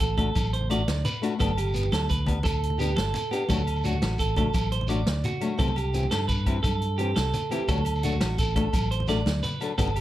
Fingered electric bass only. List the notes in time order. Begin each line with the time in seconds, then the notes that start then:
Already playing: A1
0.35 A1
0.88 D2
1.41 G1
1.92 D2
2.45 D2
2.97 G1
3.50 D2
4.02 A1
4.54 A1
5.06 D2
5.60 C2
6.11 G2
6.64 G2
7.17 C2
7.69 D2
8.22 A1
8.73 A1
9.26 D2
9.78 G1